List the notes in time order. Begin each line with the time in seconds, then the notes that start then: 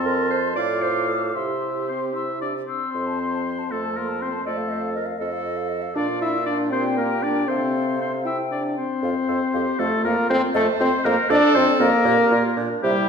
Already playing: F2 C4 A5 C6
0.05 A#4
0.30 C5
0.55 A2 F4 D5 F5 D6
0.82 C5
1.09 A4
1.34 C3 E4 G4 E5 C6
1.88 C4 C5
2.15 E4 E5 C6
2.42 D4 D5 D6
2.67 C4 C5 E6
2.93 F2 C6
3.07 A5
3.20 C6
3.31 A5
3.45 C6
3.59 A5
3.70 F2 A3 A4 C6
3.82 A5
3.96 A#3 A#4 C6
4.09 A5
4.20 C4 C5 C6
4.33 A5
4.44 F2 A3 A4 D5 D#5
4.57 F5
4.69 C5 D#5
4.81 F5
4.93 A#4 D#5
5.06 F5
5.18 F2 A4 D#5
5.33 F5
5.44 D#5
5.57 F5
5.69 D#5
5.82 F5
5.95 A#2 D4 F4 D5 F5
6.21 E4 E5
6.46 D4 D5
6.71 C4 G4 C5 G5
6.97 A#3 A#4
7.23 D4 D5
7.48 C3 C4 A4 C5 F5
8.00 C4 C5
8.25 E4 E5 G5
8.51 D4 D5
8.77 C4 C5
9.03 F2 F4 F5
9.28 F2 A4 F5
9.54 F2 G4 F5
9.79 F2 A3 F4 A4 F5
10.04 F2 A#3 A#4 F5
10.29 F2 C4 C5 F5
10.54 F2 A3 A4 C5 D#5
10.80 F2 C4 C5 D#5
11.04 F2 A#3 A#4 D#5
11.30 F2 D4 A4 D5 D#5
11.54 F2 C4 C5 D#5
11.79 F2 A#3 A#4 D#5
12.04 A#2 G4 D5
12.30 A#2 F4 D5
12.56 A#2 D4 D5
12.83 C3 G3 E4 G4 E5